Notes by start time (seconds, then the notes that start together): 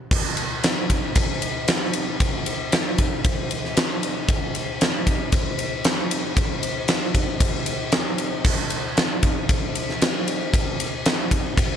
0.11 kick, crash
0.37 ride
0.64 snare, ride
0.90 kick, ride
1.15 kick, ride
1.42 ride
1.68 snare, ride
1.93 ride
2.20 kick, ride
2.46 ride
2.72 snare, ride
2.98 kick, ride
3.24 kick, ride
3.51 ride
3.64 snare
3.77 snare, ride
4.03 ride
4.29 kick, ride
4.55 ride
4.81 snare, ride
5.07 kick, ride
5.32 kick, ride
5.59 ride
5.84 snare, ride
6.11 ride
6.37 kick, ride
6.63 ride
6.88 snare, ride
7.15 kick, ride
7.40 kick, ride
7.66 ride
7.92 snare, ride
8.18 ride
8.44 kick, crash
8.70 ride
8.97 snare, ride
9.23 kick, ride
9.49 kick, ride
9.75 ride
9.89 snare
10.02 snare, ride
10.28 ride
10.54 kick, ride
10.80 ride
11.05 snare, ride
11.31 kick, ride
11.57 kick, ride